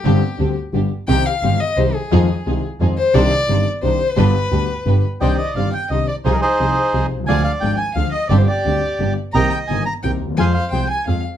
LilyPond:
<<
  \new Staff \with { instrumentName = "Violin" } { \time 3/4 \key c \minor \tempo 4 = 174 g'4. r4. | g''8 f''4 ees''8 c''8 aes'8~ | aes'4. r4 c''8 | d''4. r8 c''4 |
b'2~ b'8 r8 | g''8 ees''8 f''8 g''8 ees''8 d''8 | c''16 bes'16 c''2 r8 | aes''8 f''8 g''8 aes''8 f''8 ees''8 |
d''16 c''16 d''2 r8 | bes''8 g''8 aes''8 bes''8 g''8 r8 | aes''8 f''8 g''8 aes''8 f''8 r8 | }
  \new Staff \with { instrumentName = "Bandoneon" } { \time 3/4 \key c \minor << { r2. | r2. | r2. | r2. |
r2. | g''8 ees''8 f''8 g''8 ees''8 d''8 | c''16 bes'16 c''2 r8 | aes''8 f''8 g''8 aes''8 f''8 ees''8 |
d''16 c''16 d''2 r8 | bes''8 g''8 aes''8 bes''8 g''8 r8 | aes''8 f''8 g''8 aes''8 f''8 r8 | } \\ { r2. | r2. | r2. | r2. |
r2. | <d'' ees''>4. r4. | <ees' aes'>8 <ees' aes'>2 r8 | <d'' f''>4. r4. |
g'8 g'2 r8 | <ees'' g''>4. r4. | <c'' f''>4. r4. | } >> }
  \new Staff \with { instrumentName = "String section" } { \time 3/4 \key c \minor <c' d' g'>8 r8 <c' d' g'>8 r8 <b d' g'>8 r8 | <c' ees' g'>8 r8 <c' ees' g'>8 r8 <c' ees' g'>8 r8 | <ees' f' aes'>8 r8 <ees' f' aes'>8 r8 <ees' f' aes'>8 r8 | <d' ees' c''>8 r8 <d' ees' c''>8 r8 <d' ees' c''>8 r8 |
<d' g' b'>8 r8 <d' g' b'>8 r8 <d' g' b'>8 r8 | <d' ees' c''>8 r8 <d' ees' c''>8 r8 <d' ees' c''>8 r8 | <ees' f' aes'>8 r8 <ees' f' aes'>8 r8 <ees' f' aes'>8 r8 | <d' f' aes'>8 r8 <d' f' aes'>8 r8 <d' f' aes'>8 r8 |
<c' d' g'>8 r8 <c' d' g'>8 r8 <b d' g'>8 r8 | <c' ees' bes'>8 r8 <c' ees' bes'>8 r8 <c' ees' bes'>8 r8 | <c' f' aes'>8 r8 <c' f' aes'>8 r8 <c' f' aes'>8 r8 | }
  \new Staff \with { instrumentName = "Grand piano" } { \clef bass \time 3/4 \key c \minor <g,, g, d g c' g'>8 r8 <d, d g c' g'>8 r8 <g,, g, d g b g'>8 r8 | <c, c ees g c' g'>8 r8 <g,, g, ees g c' g'>8 r8 <c, c ees g c' g'>8 r8 | <f, ees f aes c' f'>8 r8 <c, c ees aes c' f'>8 r8 <f, ees f aes c' f'>8 r8 | <c, c ees c' d' g'>8 r8 <g,, g, ees c' d' g'>8 r8 <c, c ees c' d' g'>8 r8 |
<g,, g, d g b g'>8 r8 <d, d g b g'>8 r8 <g,, g, d g b g'>8 r8 | <c, c ees c' d' g'>8 r8 <g,, g, ees c' d' g'>8 r8 <c, c ees c' d' g'>8 r8 | <c, c f c' ees' aes'>8 r8 <c, c f c' ees' aes'>8 r8 <c, c f c' ees' aes'>8 r32 b,,32 c,32 des,32 | <d, d f aes d' aes'>8 r8 <aes,, aes, f aes d' aes'>8 r8 <d, d f aes d' aes'>8 r8 |
<g,, g, d g c' g'>8 r8 <d, d g c' g'>8 r8 <g,, g, d g b g'>8 r8 | <c, c ees bes c' g'>8 r8 <g,, g, ees bes c' g'>8 r8 <c, c ees bes c' g'>8 r32 d,32 ees,32 e,32 | <f, f aes c' aes'>8 r8 <c, c f aes c' aes'>8 r8 <f, f aes c' aes'>8 r8 | }
  \new Staff \with { instrumentName = "Double bass" } { \clef bass \time 3/4 \key c \minor g,,8 r8 d,8 r8 g,,8 r8 | c,8 r8 g,,8 r8 c,8 r8 | f,8 r8 c,8 r8 f,8 r8 | c,8 r8 g,,8 r8 c,8 r8 |
g,,8 r8 d,8 r8 g,,8 r8 | c,8 r8 g,,8 r8 c,8 r8 | c,8 r8 c,8 r8 c,8 c,8 | d,8 r8 aes,,8 r8 d,8 r8 |
g,,8 r8 d,8 r8 g,,8 r8 | c,8 r8 g,,8 r8 c,8 ees,8 | f,8 r8 c,8 r8 f,8 r8 | }
>>